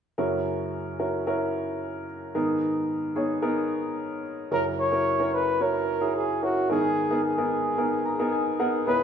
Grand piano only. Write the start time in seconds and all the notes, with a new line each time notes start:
0.18 F#2 C#3 C#4 E4 F#4 A#4
0.99 C#4 E4 F#4 A#4
1.27 C#4 E4 F#4 A#4
2.35 G#2 D#3 B3 D#4 G#4 A#4
3.15 B3 D#4 G#4 C#5
3.42 B3 D#4 G#4 A#4
4.51 F#2 C#3 C#4 E4 F#4 A#4
4.92 C#4 E4 F#4 A#4
5.19 C#4 E4 F#4 A#4
5.60 C#4 E4 F#4 C#5
6.01 C#4 E4 F#4 G#4
6.42 C#4 E4 F#4 A#4
6.69 G#2 D#3 B3 D#4 G#4 A#4
7.10 B3 D#4 G#4 A#4
7.38 B3 D#4 G#4 A#4
7.78 B3 D#4 G#4 A#4
8.05 A#5
8.19 B3 D#4 G#4 A#4
8.32 G#5
8.59 B3 D#4 G#4 A#4 F#5
8.86 C#2 G#2 B3 C#4 E4 G#4